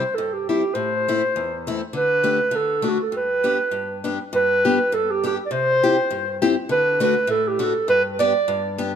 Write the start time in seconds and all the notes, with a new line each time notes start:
Already playing: C5
0.15 G2 A4
0.33 G4
0.49 G3 C4 E4 G4
0.74 A2 C5
1.08 A3 C4 E4
1.36 E2
1.67 A3 C4 E4
1.93 D3 B4
2.24 A3 D4 G4
2.51 D3
2.56 A4
2.82 A3 D4 F#4
2.89 F#4
3.03 A4
3.12 G2
3.16 B4
3.44 B3 D4 G4
3.71 G2
4.04 B3 D4 G4
4.33 G2 B4
4.65 B3 D4 G4
4.92 G2 A4
5.11 G4
5.24 B3 D4 G4
5.46 D5
5.51 C3 C5
5.84 C4 E4 G4
6.11 G2
6.42 C4 E4 G4
6.69 D3 B4
7.00 A3 D4 F#4 B4
7.27 A2 A4
7.48 G4
7.59 A3 D4 F#4
7.63 A4
7.88 G2 B4
8.19 B3 D4 G4 D5
8.48 G2
8.78 B3 D4 G4